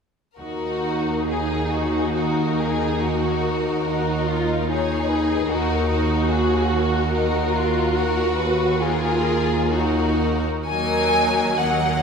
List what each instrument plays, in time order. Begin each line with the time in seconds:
0.38 double bass section D#2, cello section D#2, viola section D#4, violin section F#4 A#4
1.29 violin section G#4
1.71 violin section F#4
2.14 violin section F#4 A#4
2.59 violin section G#4
2.98 violin section F#4 A#4
3.85 violin section D#4, viola section F#4
4.28 viola section F4
4.69 viola section D#4, violin section G#4 C#5
5.08 violin section B4
5.48 cello section D#2, double bass section D#2, viola section D#4, violin section F#4 A#4
5.91 violin section F#4
6.29 viola section F#4, violin section G#4
6.71 violin section A#4
7.15 violin section D#4, viola section F#4
7.56 violin section F4
7.96 violin section F#4 A#4
8.36 violin section B4
8.80 viola section F4, violin section G#4 A#4
9.72 viola section D#4, violin section F#4 A#4
10.67 double bass section D#2, cello section D#3, viola section F#3 A#3, violin section D#4 A#4 G#5
11.58 viola section F#3 A#3, violin section D#4 A#4 F#5